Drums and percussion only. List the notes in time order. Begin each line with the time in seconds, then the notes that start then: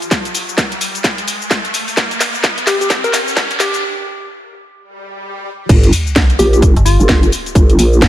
0.02 closed hi-hat, cabasa
0.11 kick, snare, closed hi-hat, cabasa
0.25 closed hi-hat, cabasa
0.35 open hi-hat, cabasa
0.49 cabasa
0.58 kick, snare, closed hi-hat, cabasa
0.72 closed hi-hat, cabasa
0.81 open hi-hat, cabasa
0.95 closed hi-hat, cabasa
1.04 kick, snare, closed hi-hat, cabasa
1.18 closed hi-hat, cabasa
1.28 open hi-hat, cabasa
1.42 cabasa
1.51 kick, snare, closed hi-hat, cabasa
1.65 closed hi-hat, cabasa
1.74 open hi-hat, cabasa
1.88 open hi-hat, cabasa
1.97 kick, snare, closed hi-hat, cabasa
2.11 closed hi-hat, cabasa
2.20 snare, open hi-hat, cabasa
2.35 cabasa
2.44 kick, snare, closed hi-hat, cabasa
2.58 closed hi-hat, cabasa
2.67 snare, open hi-hat, cabasa
2.81 closed hi-hat, cabasa
2.90 kick, snare, closed hi-hat, cabasa
3.04 closed hi-hat, cabasa
3.13 snare, open hi-hat, cabasa
3.28 cabasa
3.37 kick, snare, closed hi-hat, cabasa
3.51 closed hi-hat, cabasa
3.60 snare, open hi-hat, cabasa
3.74 closed hi-hat, cabasa
5.69 kick, closed hi-hat, crash, cabasa
5.83 closed hi-hat, cabasa
5.93 open hi-hat, cabasa
6.07 cabasa
6.16 kick, snare, closed hi-hat, cabasa
6.30 closed hi-hat, cabasa
6.39 open hi-hat, cabasa
6.53 closed hi-hat, cabasa
6.62 kick, closed hi-hat, cabasa
6.76 closed hi-hat, cabasa
6.86 open hi-hat, cabasa
7.00 cabasa
7.09 kick, snare, closed hi-hat, cabasa
7.23 closed hi-hat, cabasa
7.32 open hi-hat, cabasa
7.46 closed hi-hat, cabasa
7.55 kick, closed hi-hat, cabasa
7.70 closed hi-hat, cabasa
7.79 open hi-hat, cabasa
7.93 cabasa
8.02 kick, snare, closed hi-hat, cabasa